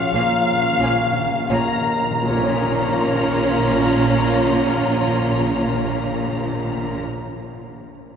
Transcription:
Already playing: A#2 C#3 F3 A#3 C#4 F4 C#5 F5
0.05 A#2
0.14 A#1 A#2 F3 A#3 C#4
0.24 A#2
0.33 A#2
0.42 A#2
0.52 A#2
0.63 A#2
0.72 A#2
0.80 A#1 A#2 F3 A#3 C#4
0.91 A#2
1.01 A#2
1.11 A#2
1.20 A#2
1.29 A#2
1.40 A#2
1.49 A#1 A#2 F3 A#3 C#4 A#4 C#5 A#5
1.59 A#2
1.71 A#2
1.81 A#2
1.91 A#2
2.01 A#2
2.11 A#2
2.22 A#1 A#2 F3 A#3 C#4 F4 A#4 C#5 A#5, tam-tam
2.30 A#2 A#3
2.37 A#2 C#4
2.43 A#2 C#5
2.49 A#2
2.56 A#2
2.63 A#2
2.69 A#2
2.76 A#2
2.83 A#2
2.89 A#2
2.96 A#2
3.02 A#2
3.08 A#2
3.14 A#2
3.20 A#2
3.27 A#2
3.34 A#2
3.41 A#2
3.47 A#2
3.53 A#2
3.59 A#2
3.66 A#2
3.73 A#2
3.79 A#2
3.86 A#2
3.92 A#2
3.99 A#2
4.05 A#2
4.12 A#2
4.18 A#2
4.25 A#2
4.31 A#2
4.38 A#2
4.44 A#2
4.51 A#2
4.57 A#2
4.63 A#2
4.69 A#2
4.76 A#2
4.82 A#2
4.89 A#2
4.95 A#2
5.02 A#2
5.08 A#2
5.14 A#2
5.21 A#2
5.27 A#2
5.33 A#2
5.40 A#2
5.47 A#2
5.53 A#2
5.60 A#2
5.66 A#2
5.73 A#2
5.80 A#2
5.86 A#2
5.93 A#2
6.00 A#2
6.06 A#2
6.13 A#2
6.20 A#2
6.26 A#2
6.33 A#2
6.39 A#2
6.45 A#2
6.52 A#2
6.58 A#2
6.65 A#2
6.71 A#2
6.77 A#2
6.84 A#2
6.91 A#2
6.97 A#2

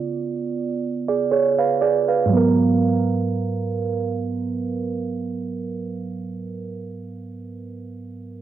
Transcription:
Already playing: C#3 B3 F4 D5
1.08 G#4 D5
1.31 G#4 C#5
1.59 B4 F5
1.81 G#4 D5
2.08 B4 F5
2.26 G#2 F#3
2.33 B3 A#4

